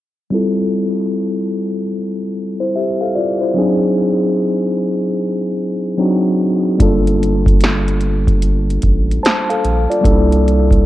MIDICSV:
0, 0, Header, 1, 4, 480
1, 0, Start_track
1, 0, Key_signature, -1, "major"
1, 0, Tempo, 810811
1, 186, Time_signature, 4, 2, 24, 8
1, 6427, End_track
2, 0, Start_track
2, 0, Title_t, "Tine electric piano"
2, 0, Program_c, 0, 4
2, 180, Note_on_c, 0, 55, 71
2, 185, Note_on_c, 0, 60, 61
2, 192, Note_on_c, 0, 64, 68
2, 196, Note_on_c, 0, 65, 57
2, 203, Note_on_c, 0, 69, 82
2, 317, Control_c, 0, 64, 127
2, 998, Note_off_c, 0, 55, 0
2, 1001, Note_off_c, 0, 60, 0
2, 1004, Note_off_c, 0, 64, 0
2, 1007, Note_off_c, 0, 65, 0
2, 1010, Note_off_c, 0, 69, 0
2, 1540, Note_on_c, 0, 72, 59
2, 1544, Note_on_c, 0, 64, 51
2, 1622, Note_off_c, 0, 72, 0
2, 1624, Note_off_c, 0, 64, 0
2, 1631, Note_on_c, 0, 76, 53
2, 1635, Note_on_c, 0, 67, 46
2, 1775, Note_off_c, 0, 76, 0
2, 1777, Note_off_c, 0, 67, 0
2, 1781, Note_on_c, 0, 77, 67
2, 1783, Note_on_c, 0, 69, 49
2, 1862, Note_off_c, 0, 77, 0
2, 1863, Note_off_c, 0, 69, 0
2, 1866, Note_on_c, 0, 74, 63
2, 1870, Note_on_c, 0, 65, 52
2, 2013, Note_off_c, 0, 74, 0
2, 2015, Note_off_c, 0, 65, 0
2, 2019, Note_on_c, 0, 72, 58
2, 2023, Note_on_c, 0, 64, 52
2, 2095, Note_on_c, 0, 54, 72
2, 2104, Note_on_c, 0, 60, 63
2, 2108, Note_on_c, 0, 62, 67
2, 2113, Control_c, 0, 64, 0
2, 2116, Note_on_c, 0, 63, 58
2, 2121, Note_on_c, 0, 68, 81
2, 2224, Control_c, 0, 64, 127
2, 2248, Note_off_c, 0, 72, 0
2, 2250, Note_off_c, 0, 64, 0
2, 2916, Note_off_c, 0, 54, 0
2, 2921, Note_off_c, 0, 60, 0
2, 2923, Note_off_c, 0, 62, 0
2, 2926, Note_off_c, 0, 63, 0
2, 2929, Note_off_c, 0, 68, 0
2, 3537, Note_on_c, 0, 54, 73
2, 3541, Note_on_c, 0, 60, 67
2, 3548, Note_on_c, 0, 62, 55
2, 3552, Note_on_c, 0, 63, 61
2, 3559, Note_on_c, 0, 66, 72
2, 3962, Note_off_c, 0, 54, 0
2, 3964, Note_off_c, 0, 60, 0
2, 3968, Note_off_c, 0, 62, 0
2, 3970, Note_off_c, 0, 63, 0
2, 3974, Note_off_c, 0, 66, 0
2, 4014, Note_on_c, 0, 55, 67
2, 4019, Note_on_c, 0, 58, 61
2, 4025, Note_on_c, 0, 62, 65
2, 4032, Note_on_c, 0, 65, 70
2, 4035, Control_c, 0, 64, 0
2, 4039, Note_on_c, 0, 69, 73
2, 4123, Control_c, 0, 64, 127
2, 4835, Note_off_c, 0, 55, 0
2, 4838, Note_off_c, 0, 58, 0
2, 4841, Note_off_c, 0, 62, 0
2, 4845, Note_off_c, 0, 65, 0
2, 4848, Note_off_c, 0, 69, 0
2, 5465, Note_on_c, 0, 72, 42
2, 5465, Note_on_c, 0, 81, 59
2, 5612, Note_off_c, 0, 72, 0
2, 5612, Note_off_c, 0, 81, 0
2, 5622, Note_on_c, 0, 77, 67
2, 5626, Note_on_c, 0, 69, 56
2, 5849, Note_off_c, 0, 77, 0
2, 5852, Note_off_c, 0, 69, 0
2, 5861, Note_on_c, 0, 74, 68
2, 5863, Note_on_c, 0, 65, 52
2, 5925, Note_on_c, 0, 55, 69
2, 5933, Note_on_c, 0, 58, 66
2, 5939, Note_on_c, 0, 62, 63
2, 5947, Note_on_c, 0, 63, 51
2, 5951, Note_on_c, 0, 69, 84
2, 5955, Control_c, 0, 64, 0
2, 5985, Note_on_c, 0, 64, 70
2, 5996, Note_off_c, 0, 63, 0
2, 6052, Control_c, 0, 64, 127
2, 6089, Note_off_c, 0, 65, 0
2, 6089, Note_off_c, 0, 74, 0
2, 6427, Note_off_c, 0, 55, 0
2, 6427, Note_off_c, 0, 58, 0
2, 6427, Note_off_c, 0, 62, 0
2, 6427, Note_off_c, 0, 64, 0
2, 6427, Note_off_c, 0, 69, 0
2, 6427, End_track
3, 0, Start_track
3, 0, Title_t, "Sub bass"
3, 0, Program_c, 1, 38
3, 4027, Note_on_c, 1, 31, 101
3, 5203, Note_off_c, 1, 31, 0
3, 5231, Note_on_c, 1, 33, 81
3, 5442, Note_off_c, 1, 33, 0
3, 5710, Note_on_c, 1, 34, 84
3, 5845, Note_off_c, 1, 34, 0
3, 5947, Note_on_c, 1, 36, 110
3, 6427, Note_off_c, 1, 36, 0
3, 6427, End_track
4, 0, Start_track
4, 0, Title_t, "Drums"
4, 4025, Note_on_c, 9, 36, 116
4, 4027, Note_on_c, 9, 42, 71
4, 4084, Note_off_c, 9, 36, 0
4, 4086, Note_off_c, 9, 42, 0
4, 4187, Note_on_c, 9, 42, 43
4, 4246, Note_off_c, 9, 42, 0
4, 4280, Note_on_c, 9, 42, 55
4, 4339, Note_off_c, 9, 42, 0
4, 4418, Note_on_c, 9, 36, 96
4, 4429, Note_on_c, 9, 42, 38
4, 4477, Note_off_c, 9, 36, 0
4, 4488, Note_off_c, 9, 42, 0
4, 4503, Note_on_c, 9, 42, 63
4, 4522, Note_on_c, 9, 38, 102
4, 4562, Note_off_c, 9, 42, 0
4, 4581, Note_off_c, 9, 38, 0
4, 4665, Note_on_c, 9, 42, 44
4, 4724, Note_off_c, 9, 42, 0
4, 4740, Note_on_c, 9, 42, 48
4, 4799, Note_off_c, 9, 42, 0
4, 4898, Note_on_c, 9, 36, 95
4, 4902, Note_on_c, 9, 42, 37
4, 4957, Note_off_c, 9, 36, 0
4, 4961, Note_off_c, 9, 42, 0
4, 4986, Note_on_c, 9, 42, 71
4, 5045, Note_off_c, 9, 42, 0
4, 5152, Note_on_c, 9, 42, 41
4, 5211, Note_off_c, 9, 42, 0
4, 5222, Note_on_c, 9, 42, 55
4, 5229, Note_on_c, 9, 36, 82
4, 5281, Note_off_c, 9, 42, 0
4, 5289, Note_off_c, 9, 36, 0
4, 5395, Note_on_c, 9, 42, 43
4, 5455, Note_off_c, 9, 42, 0
4, 5476, Note_on_c, 9, 42, 64
4, 5481, Note_on_c, 9, 38, 99
4, 5535, Note_off_c, 9, 42, 0
4, 5541, Note_off_c, 9, 38, 0
4, 5625, Note_on_c, 9, 42, 46
4, 5685, Note_off_c, 9, 42, 0
4, 5710, Note_on_c, 9, 42, 53
4, 5769, Note_off_c, 9, 42, 0
4, 5870, Note_on_c, 9, 42, 46
4, 5929, Note_off_c, 9, 42, 0
4, 5947, Note_on_c, 9, 36, 113
4, 5951, Note_on_c, 9, 42, 73
4, 6006, Note_off_c, 9, 36, 0
4, 6011, Note_off_c, 9, 42, 0
4, 6112, Note_on_c, 9, 42, 46
4, 6171, Note_off_c, 9, 42, 0
4, 6204, Note_on_c, 9, 42, 55
4, 6263, Note_off_c, 9, 42, 0
4, 6339, Note_on_c, 9, 36, 85
4, 6349, Note_on_c, 9, 42, 39
4, 6398, Note_off_c, 9, 36, 0
4, 6408, Note_off_c, 9, 42, 0
4, 6427, End_track
0, 0, End_of_file